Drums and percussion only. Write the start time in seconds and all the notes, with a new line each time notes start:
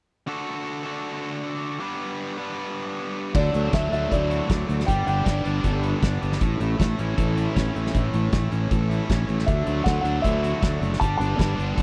3.35 kick, crash
3.54 closed hi-hat
3.73 kick, snare, closed hi-hat
3.93 closed hi-hat
4.12 kick, closed hi-hat
4.31 closed hi-hat
4.50 kick, snare, closed hi-hat
4.69 closed hi-hat
4.80 snare
4.88 kick, closed hi-hat
5.08 closed hi-hat
5.26 kick, snare, closed hi-hat
5.45 closed hi-hat
5.64 kick, closed hi-hat
5.83 closed hi-hat
6.03 kick, snare, closed hi-hat
6.23 closed hi-hat
6.32 snare
6.41 kick, closed hi-hat
6.61 closed hi-hat
6.80 kick, snare, closed hi-hat
6.99 closed hi-hat
7.18 kick, closed hi-hat
7.38 closed hi-hat
7.56 kick, snare, closed hi-hat
7.76 closed hi-hat
7.86 snare
7.95 kick, closed hi-hat
8.14 closed hi-hat
8.32 kick, snare, closed hi-hat
8.52 closed hi-hat
8.71 kick, closed hi-hat
8.91 closed hi-hat
9.10 kick, snare, closed hi-hat
9.29 closed hi-hat
9.39 snare
9.48 kick, closed hi-hat
9.67 closed hi-hat
9.86 kick, snare, closed hi-hat
10.05 closed hi-hat
10.24 kick, closed hi-hat
10.44 closed hi-hat
10.63 kick, snare, closed hi-hat
10.83 closed hi-hat
10.93 snare
11.01 kick, closed hi-hat
11.21 closed hi-hat
11.39 kick, snare, closed hi-hat
11.59 closed hi-hat
11.78 kick, closed hi-hat